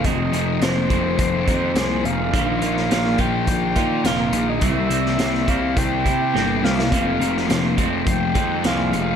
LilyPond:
<<
  \new Staff \with { instrumentName = "Soft synth lead" } { \time 4/4 \key f \minor \tempo 4 = 105 ees''4 c''2~ c''8 f''8~ | f''4. g''4. f''8. ees''16 | e''4. f''8 g''4. f''8~ | f''4. r8 g''4 f''4 | }
  \new Staff \with { instrumentName = "Clean electric guitar" } { \time 4/4 \key f \minor <c' ees' aes'>8 ees'8 c'8 c'8 c'8 ees'8 aes'8 ees'8 | f8 bes8 bes8 f8 bes8 ees'8 bes'8 ees'8 | c'8 e'8 c'8 c'8 c'8 e'8 g'8 e'8 | c'8 ees'8 c'8 c'8 c'8 ees'8 aes'8 ees'8 | }
  \new Staff \with { instrumentName = "Overdriven electric guitar" } { \time 4/4 \key f \minor <f, c f aes c'>8 <f aes c'>8 <c f aes c'>8 <f aes c'>4 <f aes c'>8 <c f aes c'>4 | <bes, ees bes ees' f'>8 <bes ees' f'>8 <ees bes ees' f'>8 <bes ees' f'>4 <bes ees' f'>8 <ees bes ees' f'>4 | <c g c' e'>8 <g c' e'>8 <c g c' e'>8 <g c' e'>4 <g c' e'>8 <c g c' e'>4 | <f, c f aes c' f'>8 <f aes c' f'>8 <f aes c' f'>8 <f aes c' f'>4 <f aes c' f'>8 <f aes c' f'>4 | }
  \new Staff \with { instrumentName = "Distorted electric guitar" } { \clef bass \time 4/4 \key f \minor <f, c f>8 <c f>8 <f, c f>8 <c f>8 <f, c f>8 <c f>8 <f, c f>8 <c f>8 | <bes, f bes>8 <f bes>8 <bes, f bes>8 <f bes>8 <bes, f bes>8 <f bes>8 <bes, f bes>8 <f bes>8 | <c g c'>8 <g c'>8 <c g c'>8 <g c'>8 <c g c'>8 <g c'>8 <c g c'>8 <g c'>8 | <f, c f>8 <c f>8 <f, c f>8 <c f>8 <f, c f>8 <c f>8 <f, c f>8 <c f>8 | }
  \new Staff \with { instrumentName = "Picked electric bass" } { \clef bass \time 4/4 \key f \minor f,,8 f,,8 f,,8 f,,8 f,,8 f,8 c,8 f,,8 | bes,,8 bes,,8 bes,,8 bes,,8 bes,,8 bes,8 f,,8 bes,,8 | c,8 c,8 c,8 c,8 c,8 c8 g,,8 c,8 | f,,8 f,,8 f,,8 f,,8 f,,8 f,8 c,8 f,,8 | }
  \new DrumStaff \with { instrumentName = "Drums" } \drummode { \time 4/4 <hh bd>8 hh8 <hh sn>8 <hh bd>8 <hh bd>8 <hh bd>8 <hh sn>8 hh8 | <hh bd>8 hh16 sn16 <hh sn>16 sn16 <hh bd>8 <hh bd>8 <hh bd>8 <hh sn>8 hh8 | <hh bd>8 hh16 sn16 <hh sn>16 sn16 <hh bd>8 <hh bd>8 <hh bd>8 sn8 sn16 sn16 | <hh bd>8 hh16 sn16 <hh sn>8 <hh bd>8 <hh bd>8 <hh bd>8 <hh sn>8 hh8 | }
>>